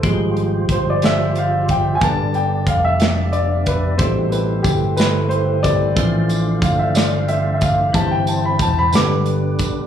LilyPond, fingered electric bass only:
\new Staff \with { instrumentName = "Fingered electric bass" } { \clef bass \time 6/8 \key g \mixolydian \tempo 4. = 61 aes,,4 g,,2 | g,,4 f,,2 | a,,4 g,,2 | a,,4 g,,2 |
g,,4 e,,8 g,,4 r8 | }